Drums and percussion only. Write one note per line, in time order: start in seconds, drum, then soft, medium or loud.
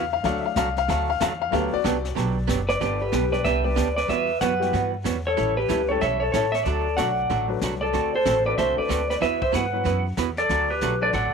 0.24 brush sweep soft
0.24 kick soft
0.24 snare soft
0.56 kick soft
0.56 snare medium
0.56 hi-hat pedal medium
0.77 snare soft
0.88 brush sweep soft
0.88 kick soft
0.88 snare soft
1.20 kick soft
1.20 snare medium
1.20 hi-hat pedal medium
1.52 brush sweep medium
1.52 kick soft
1.52 snare soft
1.85 kick soft
1.85 snare medium
1.85 hi-hat pedal medium
2.05 snare soft
2.16 brush sweep soft
2.16 kick soft
2.16 snare soft
2.49 kick soft
2.49 snare medium
2.49 hi-hat pedal medium
2.69 snare soft
2.81 brush sweep medium
2.81 kick soft
2.81 snare soft
3.13 kick soft
3.13 snare medium
3.13 hi-hat pedal medium
3.33 snare soft
3.45 brush sweep soft
3.45 kick soft
3.45 snare soft
3.77 kick soft
3.77 snare medium
3.77 hi-hat pedal medium
3.98 snare soft
4.09 brush sweep soft
4.09 kick soft
4.09 snare soft
4.41 kick soft
4.41 snare medium
4.41 hi-hat pedal medium
4.62 snare soft
4.73 brush sweep medium
4.73 kick soft
4.73 snare soft
5.05 kick soft
5.05 snare medium
5.05 hi-hat pedal medium
5.37 brush sweep soft
5.37 kick soft
5.37 snare soft
5.69 kick soft
5.69 snare medium
5.69 hi-hat pedal medium
6.01 brush sweep soft
6.01 kick soft
6.01 snare soft
6.33 kick soft
6.33 snare medium
6.33 hi-hat pedal medium
6.54 snare soft
6.65 brush sweep medium
6.65 kick soft
6.65 snare soft
6.98 kick soft
6.98 snare medium
6.98 hi-hat pedal medium
7.30 brush sweep soft
7.30 kick soft
7.30 snare soft
7.61 kick soft
7.61 snare medium
7.61 hi-hat pedal medium
7.93 brush sweep soft
7.93 kick soft
7.93 snare soft
8.26 kick soft
8.26 snare medium
8.26 hi-hat pedal medium
8.58 brush sweep soft
8.58 kick soft
8.58 snare soft
8.90 kick soft
8.90 snare medium
8.90 hi-hat pedal medium
9.10 snare soft
9.22 brush sweep soft
9.22 kick soft
9.22 snare soft
9.42 kick medium
9.54 kick soft
9.54 snare medium
9.54 hi-hat pedal soft
9.85 brush sweep soft
9.85 kick soft
9.85 snare soft
10.17 kick soft
10.17 snare medium
10.17 hi-hat pedal medium
10.37 snare soft
10.49 brush sweep soft
10.49 kick soft
10.49 snare soft
10.81 kick soft
10.81 snare medium
10.81 hi-hat pedal medium
11.13 brush sweep soft
11.13 kick soft
11.13 snare soft